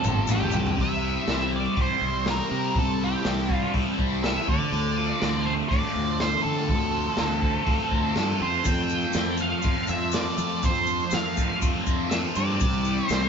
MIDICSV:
0, 0, Header, 1, 6, 480
1, 0, Start_track
1, 0, Tempo, 492611
1, 759, Time_signature, 4, 2, 24, 8
1, 12949, End_track
2, 0, Start_track
2, 0, Title_t, "Lead electric guitar"
2, 0, Program_c, 0, 29
2, 0, Note_on_c, 0, 69, 83
2, 305, Note_on_c, 0, 67, 90
2, 480, Note_off_c, 0, 69, 0
2, 739, Note_off_c, 0, 67, 0
2, 791, Note_on_c, 0, 76, 102
2, 1455, Note_off_c, 0, 76, 0
2, 1520, Note_on_c, 0, 74, 88
2, 1724, Note_off_c, 0, 74, 0
2, 1769, Note_on_c, 0, 72, 92
2, 2191, Note_off_c, 0, 72, 0
2, 2243, Note_on_c, 0, 70, 86
2, 2714, Note_off_c, 0, 70, 0
2, 2718, Note_on_c, 0, 69, 86
2, 2945, Note_off_c, 0, 69, 0
2, 2961, Note_on_c, 0, 67, 78
2, 3448, Note_off_c, 0, 67, 0
2, 3448, Note_on_c, 0, 65, 78
2, 3620, Note_off_c, 0, 65, 0
2, 4128, Note_on_c, 0, 76, 90
2, 4370, Note_off_c, 0, 76, 0
2, 4376, Note_on_c, 0, 74, 91
2, 5314, Note_on_c, 0, 72, 83
2, 5355, Note_off_c, 0, 74, 0
2, 5379, Note_off_c, 0, 72, 0
2, 5544, Note_on_c, 0, 74, 91
2, 6045, Note_on_c, 0, 72, 85
2, 6046, Note_off_c, 0, 74, 0
2, 6258, Note_off_c, 0, 72, 0
2, 6262, Note_on_c, 0, 69, 90
2, 8206, Note_off_c, 0, 69, 0
2, 8210, Note_on_c, 0, 72, 94
2, 8442, Note_on_c, 0, 79, 108
2, 8451, Note_off_c, 0, 72, 0
2, 9121, Note_off_c, 0, 79, 0
2, 9166, Note_on_c, 0, 77, 100
2, 9637, Note_off_c, 0, 77, 0
2, 9641, Note_on_c, 0, 76, 91
2, 9880, Note_off_c, 0, 76, 0
2, 9884, Note_on_c, 0, 74, 91
2, 10375, Note_off_c, 0, 74, 0
2, 10379, Note_on_c, 0, 72, 95
2, 10853, Note_on_c, 0, 77, 82
2, 10863, Note_off_c, 0, 72, 0
2, 11293, Note_off_c, 0, 77, 0
2, 11789, Note_on_c, 0, 76, 103
2, 11855, Note_off_c, 0, 76, 0
2, 12049, Note_on_c, 0, 74, 104
2, 12741, Note_off_c, 0, 74, 0
2, 12741, Note_on_c, 0, 72, 104
2, 12949, Note_off_c, 0, 72, 0
2, 12949, End_track
3, 0, Start_track
3, 0, Title_t, "Distorted electric guitar"
3, 0, Program_c, 1, 30
3, 0, Note_on_c, 1, 41, 68
3, 0, Note_on_c, 1, 48, 87
3, 0, Note_on_c, 1, 53, 87
3, 257, Note_off_c, 1, 41, 0
3, 259, Note_off_c, 1, 53, 0
3, 269, Note_on_c, 1, 41, 76
3, 272, Note_off_c, 1, 48, 0
3, 287, Note_on_c, 1, 48, 82
3, 303, Note_on_c, 1, 53, 80
3, 739, Note_off_c, 1, 41, 0
3, 748, Note_off_c, 1, 48, 0
3, 757, Note_off_c, 1, 53, 0
3, 760, Note_on_c, 1, 48, 66
3, 990, Note_on_c, 1, 64, 70
3, 1237, Note_on_c, 1, 60, 68
3, 1473, Note_on_c, 1, 55, 67
3, 1702, Note_off_c, 1, 64, 0
3, 1714, Note_on_c, 1, 64, 74
3, 1958, Note_off_c, 1, 48, 0
3, 1960, Note_off_c, 1, 60, 0
3, 1964, Note_on_c, 1, 60, 63
3, 2189, Note_off_c, 1, 64, 0
3, 2201, Note_on_c, 1, 64, 69
3, 2441, Note_off_c, 1, 60, 0
3, 2445, Note_on_c, 1, 60, 66
3, 2675, Note_off_c, 1, 55, 0
3, 2680, Note_on_c, 1, 48, 69
3, 2913, Note_off_c, 1, 64, 0
3, 2925, Note_on_c, 1, 64, 72
3, 3164, Note_off_c, 1, 60, 0
3, 3168, Note_on_c, 1, 60, 71
3, 3402, Note_on_c, 1, 55, 69
3, 3627, Note_off_c, 1, 64, 0
3, 3639, Note_on_c, 1, 64, 77
3, 3874, Note_off_c, 1, 60, 0
3, 3878, Note_on_c, 1, 60, 66
3, 3879, Note_off_c, 1, 48, 0
3, 4113, Note_off_c, 1, 64, 0
3, 4124, Note_on_c, 1, 64, 71
3, 4360, Note_off_c, 1, 55, 0
3, 4361, Note_off_c, 1, 64, 0
3, 4364, Note_on_c, 1, 50, 66
3, 4393, Note_off_c, 1, 60, 0
3, 4602, Note_off_c, 1, 50, 0
3, 4606, Note_on_c, 1, 50, 70
3, 4847, Note_on_c, 1, 65, 73
3, 5090, Note_on_c, 1, 60, 67
3, 5325, Note_on_c, 1, 57, 71
3, 5561, Note_off_c, 1, 65, 0
3, 5565, Note_on_c, 1, 65, 79
3, 5802, Note_off_c, 1, 50, 0
3, 5803, Note_off_c, 1, 60, 0
3, 5807, Note_on_c, 1, 60, 65
3, 6035, Note_off_c, 1, 65, 0
3, 6038, Note_on_c, 1, 65, 70
3, 6264, Note_off_c, 1, 60, 0
3, 6268, Note_on_c, 1, 60, 64
3, 6516, Note_on_c, 1, 50, 69
3, 6753, Note_off_c, 1, 65, 0
3, 6757, Note_on_c, 1, 65, 73
3, 6981, Note_off_c, 1, 60, 0
3, 6985, Note_on_c, 1, 60, 66
3, 7230, Note_off_c, 1, 57, 0
3, 7233, Note_on_c, 1, 57, 63
3, 7465, Note_off_c, 1, 65, 0
3, 7469, Note_on_c, 1, 65, 76
3, 7698, Note_off_c, 1, 60, 0
3, 7702, Note_on_c, 1, 60, 67
3, 7717, Note_off_c, 1, 50, 0
3, 7940, Note_off_c, 1, 65, 0
3, 7944, Note_on_c, 1, 65, 70
3, 8181, Note_off_c, 1, 60, 0
3, 8184, Note_on_c, 1, 60, 67
3, 8428, Note_on_c, 1, 41, 68
3, 8666, Note_off_c, 1, 65, 0
3, 8669, Note_on_c, 1, 65, 72
3, 8904, Note_off_c, 1, 60, 0
3, 8908, Note_on_c, 1, 60, 66
3, 9145, Note_off_c, 1, 57, 0
3, 9149, Note_on_c, 1, 57, 65
3, 9374, Note_off_c, 1, 65, 0
3, 9385, Note_on_c, 1, 65, 77
3, 9623, Note_off_c, 1, 60, 0
3, 9627, Note_on_c, 1, 60, 65
3, 9633, Note_off_c, 1, 41, 0
3, 9859, Note_off_c, 1, 65, 0
3, 9870, Note_on_c, 1, 65, 76
3, 10099, Note_off_c, 1, 60, 0
3, 10103, Note_on_c, 1, 60, 68
3, 10353, Note_on_c, 1, 41, 70
3, 10354, Note_off_c, 1, 57, 0
3, 10575, Note_off_c, 1, 65, 0
3, 10586, Note_on_c, 1, 65, 72
3, 10829, Note_off_c, 1, 60, 0
3, 10833, Note_on_c, 1, 60, 69
3, 11067, Note_on_c, 1, 57, 67
3, 11302, Note_off_c, 1, 65, 0
3, 11314, Note_on_c, 1, 65, 82
3, 11556, Note_off_c, 1, 41, 0
3, 11560, Note_off_c, 1, 60, 0
3, 11564, Note_on_c, 1, 60, 67
3, 11790, Note_off_c, 1, 65, 0
3, 11801, Note_on_c, 1, 65, 76
3, 12037, Note_off_c, 1, 60, 0
3, 12041, Note_on_c, 1, 60, 73
3, 12272, Note_off_c, 1, 57, 0
3, 12272, Note_on_c, 1, 48, 71
3, 12280, Note_off_c, 1, 65, 0
3, 12513, Note_on_c, 1, 64, 77
3, 12746, Note_off_c, 1, 60, 0
3, 12749, Note_on_c, 1, 60, 74
3, 12949, Note_off_c, 1, 48, 0
3, 12949, Note_off_c, 1, 60, 0
3, 12949, Note_off_c, 1, 64, 0
3, 12949, End_track
4, 0, Start_track
4, 0, Title_t, "Transistor combo organ"
4, 0, Program_c, 2, 18
4, 0, Note_on_c, 2, 53, 64
4, 0, Note_on_c, 2, 57, 60
4, 0, Note_on_c, 2, 62, 60
4, 0, Note_on_c, 2, 69, 75
4, 724, Note_off_c, 2, 57, 0
4, 726, Note_off_c, 2, 69, 0
4, 737, Note_off_c, 2, 53, 0
4, 737, Note_off_c, 2, 62, 0
4, 744, Note_on_c, 2, 60, 53
4, 745, Note_on_c, 2, 52, 60
4, 749, Note_on_c, 2, 55, 52
4, 753, Note_on_c, 2, 67, 64
4, 2655, Note_off_c, 2, 67, 0
4, 2673, Note_on_c, 2, 69, 68
4, 4315, Note_off_c, 2, 52, 0
4, 4316, Note_off_c, 2, 55, 0
4, 4370, Note_on_c, 2, 53, 66
4, 4379, Note_on_c, 2, 62, 63
4, 6269, Note_off_c, 2, 62, 0
4, 6292, Note_on_c, 2, 76, 63
4, 8423, Note_off_c, 2, 76, 0
4, 8425, Note_on_c, 2, 57, 55
4, 10311, Note_off_c, 2, 60, 0
4, 10343, Note_on_c, 2, 62, 54
4, 12233, Note_off_c, 2, 57, 0
4, 12237, Note_off_c, 2, 69, 0
4, 12245, Note_off_c, 2, 53, 0
4, 12251, Note_off_c, 2, 62, 0
4, 12275, Note_on_c, 2, 67, 69
4, 12279, Note_on_c, 2, 55, 57
4, 12283, Note_on_c, 2, 52, 62
4, 12286, Note_on_c, 2, 60, 59
4, 12949, Note_off_c, 2, 52, 0
4, 12949, Note_off_c, 2, 55, 0
4, 12949, Note_off_c, 2, 60, 0
4, 12949, Note_off_c, 2, 67, 0
4, 12949, End_track
5, 0, Start_track
5, 0, Title_t, "Fingered electric bass"
5, 0, Program_c, 3, 33
5, 48, Note_on_c, 3, 31, 82
5, 260, Note_off_c, 3, 31, 0
5, 278, Note_on_c, 3, 33, 90
5, 495, Note_off_c, 3, 33, 0
5, 523, Note_on_c, 3, 36, 91
5, 737, Note_off_c, 3, 36, 0
5, 766, Note_on_c, 3, 36, 85
5, 1137, Note_off_c, 3, 36, 0
5, 1243, Note_on_c, 3, 36, 82
5, 1616, Note_off_c, 3, 36, 0
5, 1725, Note_on_c, 3, 36, 85
5, 1816, Note_off_c, 3, 36, 0
5, 1964, Note_on_c, 3, 36, 83
5, 2336, Note_off_c, 3, 36, 0
5, 2447, Note_on_c, 3, 48, 87
5, 2685, Note_on_c, 3, 36, 91
5, 2700, Note_off_c, 3, 48, 0
5, 3057, Note_off_c, 3, 36, 0
5, 3167, Note_on_c, 3, 36, 87
5, 3538, Note_off_c, 3, 36, 0
5, 3649, Note_on_c, 3, 36, 95
5, 3738, Note_off_c, 3, 36, 0
5, 3888, Note_on_c, 3, 36, 85
5, 4259, Note_off_c, 3, 36, 0
5, 4368, Note_on_c, 3, 38, 86
5, 4458, Note_off_c, 3, 38, 0
5, 4601, Note_on_c, 3, 38, 97
5, 4975, Note_off_c, 3, 38, 0
5, 5087, Note_on_c, 3, 38, 86
5, 5458, Note_off_c, 3, 38, 0
5, 5565, Note_on_c, 3, 38, 92
5, 5656, Note_off_c, 3, 38, 0
5, 5802, Note_on_c, 3, 38, 88
5, 6175, Note_off_c, 3, 38, 0
5, 6282, Note_on_c, 3, 50, 92
5, 6520, Note_on_c, 3, 38, 92
5, 6534, Note_off_c, 3, 50, 0
5, 6894, Note_off_c, 3, 38, 0
5, 6991, Note_on_c, 3, 38, 83
5, 7369, Note_off_c, 3, 38, 0
5, 7475, Note_on_c, 3, 38, 93
5, 7570, Note_off_c, 3, 38, 0
5, 7720, Note_on_c, 3, 38, 80
5, 7907, Note_off_c, 3, 38, 0
5, 7953, Note_on_c, 3, 43, 77
5, 8171, Note_off_c, 3, 43, 0
5, 8194, Note_on_c, 3, 41, 80
5, 8436, Note_off_c, 3, 41, 0
5, 8439, Note_on_c, 3, 41, 93
5, 8814, Note_off_c, 3, 41, 0
5, 8913, Note_on_c, 3, 41, 87
5, 9290, Note_off_c, 3, 41, 0
5, 9403, Note_on_c, 3, 41, 91
5, 9495, Note_off_c, 3, 41, 0
5, 9639, Note_on_c, 3, 41, 88
5, 10013, Note_off_c, 3, 41, 0
5, 10117, Note_on_c, 3, 53, 90
5, 10365, Note_on_c, 3, 41, 91
5, 10379, Note_off_c, 3, 53, 0
5, 10737, Note_off_c, 3, 41, 0
5, 10843, Note_on_c, 3, 41, 90
5, 11216, Note_off_c, 3, 41, 0
5, 11327, Note_on_c, 3, 41, 88
5, 11417, Note_off_c, 3, 41, 0
5, 11567, Note_on_c, 3, 41, 86
5, 11938, Note_off_c, 3, 41, 0
5, 12048, Note_on_c, 3, 43, 89
5, 12293, Note_on_c, 3, 36, 95
5, 12307, Note_off_c, 3, 43, 0
5, 12662, Note_off_c, 3, 36, 0
5, 12764, Note_on_c, 3, 36, 89
5, 12949, Note_off_c, 3, 36, 0
5, 12949, End_track
6, 0, Start_track
6, 0, Title_t, "Drums"
6, 39, Note_on_c, 9, 70, 75
6, 44, Note_on_c, 9, 45, 101
6, 136, Note_off_c, 9, 70, 0
6, 141, Note_off_c, 9, 45, 0
6, 265, Note_on_c, 9, 70, 96
6, 281, Note_on_c, 9, 45, 98
6, 362, Note_off_c, 9, 70, 0
6, 379, Note_off_c, 9, 45, 0
6, 400, Note_on_c, 9, 43, 86
6, 498, Note_off_c, 9, 43, 0
6, 501, Note_on_c, 9, 70, 75
6, 521, Note_on_c, 9, 43, 103
6, 598, Note_off_c, 9, 70, 0
6, 618, Note_off_c, 9, 43, 0
6, 648, Note_on_c, 9, 43, 92
6, 746, Note_off_c, 9, 43, 0
6, 763, Note_on_c, 9, 36, 104
6, 764, Note_on_c, 9, 46, 58
6, 860, Note_off_c, 9, 36, 0
6, 861, Note_off_c, 9, 46, 0
6, 1244, Note_on_c, 9, 46, 52
6, 1245, Note_on_c, 9, 38, 106
6, 1342, Note_off_c, 9, 46, 0
6, 1343, Note_off_c, 9, 38, 0
6, 1721, Note_on_c, 9, 46, 52
6, 1726, Note_on_c, 9, 36, 107
6, 1818, Note_off_c, 9, 46, 0
6, 1823, Note_off_c, 9, 36, 0
6, 2202, Note_on_c, 9, 46, 52
6, 2203, Note_on_c, 9, 38, 108
6, 2299, Note_off_c, 9, 46, 0
6, 2300, Note_off_c, 9, 38, 0
6, 2683, Note_on_c, 9, 46, 52
6, 2685, Note_on_c, 9, 36, 110
6, 2780, Note_off_c, 9, 46, 0
6, 2783, Note_off_c, 9, 36, 0
6, 3165, Note_on_c, 9, 46, 55
6, 3166, Note_on_c, 9, 38, 109
6, 3262, Note_off_c, 9, 46, 0
6, 3263, Note_off_c, 9, 38, 0
6, 3406, Note_on_c, 9, 36, 79
6, 3504, Note_off_c, 9, 36, 0
6, 3642, Note_on_c, 9, 46, 53
6, 3647, Note_on_c, 9, 36, 105
6, 3739, Note_off_c, 9, 46, 0
6, 3744, Note_off_c, 9, 36, 0
6, 3887, Note_on_c, 9, 36, 85
6, 3984, Note_off_c, 9, 36, 0
6, 4130, Note_on_c, 9, 46, 55
6, 4131, Note_on_c, 9, 38, 108
6, 4228, Note_off_c, 9, 46, 0
6, 4229, Note_off_c, 9, 38, 0
6, 4366, Note_on_c, 9, 36, 98
6, 4463, Note_off_c, 9, 36, 0
6, 4608, Note_on_c, 9, 46, 58
6, 4705, Note_off_c, 9, 46, 0
6, 5083, Note_on_c, 9, 46, 55
6, 5084, Note_on_c, 9, 38, 105
6, 5180, Note_off_c, 9, 46, 0
6, 5181, Note_off_c, 9, 38, 0
6, 5564, Note_on_c, 9, 36, 108
6, 5567, Note_on_c, 9, 46, 54
6, 5661, Note_off_c, 9, 36, 0
6, 5664, Note_off_c, 9, 46, 0
6, 6041, Note_on_c, 9, 46, 54
6, 6042, Note_on_c, 9, 38, 104
6, 6138, Note_off_c, 9, 46, 0
6, 6139, Note_off_c, 9, 38, 0
6, 6402, Note_on_c, 9, 38, 30
6, 6499, Note_off_c, 9, 38, 0
6, 6516, Note_on_c, 9, 46, 54
6, 6517, Note_on_c, 9, 36, 114
6, 6614, Note_off_c, 9, 36, 0
6, 6614, Note_off_c, 9, 46, 0
6, 6985, Note_on_c, 9, 46, 52
6, 6986, Note_on_c, 9, 38, 105
6, 7083, Note_off_c, 9, 38, 0
6, 7083, Note_off_c, 9, 46, 0
6, 7233, Note_on_c, 9, 36, 80
6, 7331, Note_off_c, 9, 36, 0
6, 7468, Note_on_c, 9, 46, 55
6, 7473, Note_on_c, 9, 36, 114
6, 7565, Note_off_c, 9, 46, 0
6, 7571, Note_off_c, 9, 36, 0
6, 7713, Note_on_c, 9, 36, 83
6, 7811, Note_off_c, 9, 36, 0
6, 7948, Note_on_c, 9, 46, 54
6, 7949, Note_on_c, 9, 38, 104
6, 8045, Note_off_c, 9, 46, 0
6, 8046, Note_off_c, 9, 38, 0
6, 8422, Note_on_c, 9, 70, 96
6, 8431, Note_on_c, 9, 46, 57
6, 8434, Note_on_c, 9, 36, 109
6, 8519, Note_off_c, 9, 70, 0
6, 8528, Note_off_c, 9, 46, 0
6, 8532, Note_off_c, 9, 36, 0
6, 8551, Note_on_c, 9, 70, 28
6, 8648, Note_off_c, 9, 70, 0
6, 8665, Note_on_c, 9, 70, 67
6, 8762, Note_off_c, 9, 70, 0
6, 8777, Note_on_c, 9, 70, 25
6, 8875, Note_off_c, 9, 70, 0
6, 8893, Note_on_c, 9, 70, 95
6, 8913, Note_on_c, 9, 46, 54
6, 8914, Note_on_c, 9, 38, 109
6, 8990, Note_off_c, 9, 70, 0
6, 9010, Note_off_c, 9, 46, 0
6, 9011, Note_off_c, 9, 38, 0
6, 9133, Note_on_c, 9, 70, 74
6, 9230, Note_off_c, 9, 70, 0
6, 9377, Note_on_c, 9, 70, 97
6, 9393, Note_on_c, 9, 46, 55
6, 9399, Note_on_c, 9, 36, 109
6, 9474, Note_off_c, 9, 70, 0
6, 9491, Note_off_c, 9, 46, 0
6, 9496, Note_off_c, 9, 36, 0
6, 9620, Note_on_c, 9, 70, 83
6, 9718, Note_off_c, 9, 70, 0
6, 9858, Note_on_c, 9, 70, 107
6, 9882, Note_on_c, 9, 46, 56
6, 9883, Note_on_c, 9, 38, 107
6, 9956, Note_off_c, 9, 70, 0
6, 9979, Note_off_c, 9, 46, 0
6, 9980, Note_off_c, 9, 38, 0
6, 10112, Note_on_c, 9, 70, 86
6, 10209, Note_off_c, 9, 70, 0
6, 10355, Note_on_c, 9, 70, 109
6, 10362, Note_on_c, 9, 46, 54
6, 10363, Note_on_c, 9, 36, 110
6, 10452, Note_off_c, 9, 70, 0
6, 10459, Note_off_c, 9, 46, 0
6, 10460, Note_off_c, 9, 36, 0
6, 10476, Note_on_c, 9, 70, 30
6, 10573, Note_off_c, 9, 70, 0
6, 10587, Note_on_c, 9, 70, 72
6, 10684, Note_off_c, 9, 70, 0
6, 10717, Note_on_c, 9, 70, 29
6, 10815, Note_off_c, 9, 70, 0
6, 10822, Note_on_c, 9, 70, 103
6, 10843, Note_on_c, 9, 46, 52
6, 10844, Note_on_c, 9, 38, 111
6, 10920, Note_off_c, 9, 70, 0
6, 10940, Note_off_c, 9, 46, 0
6, 10941, Note_off_c, 9, 38, 0
6, 11077, Note_on_c, 9, 70, 72
6, 11085, Note_on_c, 9, 36, 76
6, 11174, Note_off_c, 9, 70, 0
6, 11182, Note_off_c, 9, 36, 0
6, 11318, Note_on_c, 9, 70, 99
6, 11325, Note_on_c, 9, 36, 106
6, 11326, Note_on_c, 9, 46, 52
6, 11415, Note_off_c, 9, 70, 0
6, 11423, Note_off_c, 9, 36, 0
6, 11424, Note_off_c, 9, 46, 0
6, 11559, Note_on_c, 9, 70, 76
6, 11563, Note_on_c, 9, 36, 83
6, 11656, Note_off_c, 9, 70, 0
6, 11661, Note_off_c, 9, 36, 0
6, 11801, Note_on_c, 9, 46, 53
6, 11802, Note_on_c, 9, 38, 106
6, 11805, Note_on_c, 9, 70, 95
6, 11898, Note_off_c, 9, 46, 0
6, 11899, Note_off_c, 9, 38, 0
6, 11902, Note_off_c, 9, 70, 0
6, 12038, Note_on_c, 9, 70, 72
6, 12135, Note_off_c, 9, 70, 0
6, 12171, Note_on_c, 9, 38, 30
6, 12268, Note_off_c, 9, 38, 0
6, 12278, Note_on_c, 9, 70, 94
6, 12283, Note_on_c, 9, 46, 56
6, 12286, Note_on_c, 9, 36, 115
6, 12376, Note_off_c, 9, 70, 0
6, 12381, Note_off_c, 9, 46, 0
6, 12384, Note_off_c, 9, 36, 0
6, 12404, Note_on_c, 9, 70, 26
6, 12501, Note_off_c, 9, 70, 0
6, 12518, Note_on_c, 9, 70, 62
6, 12615, Note_off_c, 9, 70, 0
6, 12645, Note_on_c, 9, 70, 27
6, 12743, Note_off_c, 9, 70, 0
6, 12754, Note_on_c, 9, 70, 87
6, 12773, Note_on_c, 9, 46, 59
6, 12774, Note_on_c, 9, 38, 108
6, 12851, Note_off_c, 9, 70, 0
6, 12870, Note_off_c, 9, 46, 0
6, 12871, Note_off_c, 9, 38, 0
6, 12949, End_track
0, 0, End_of_file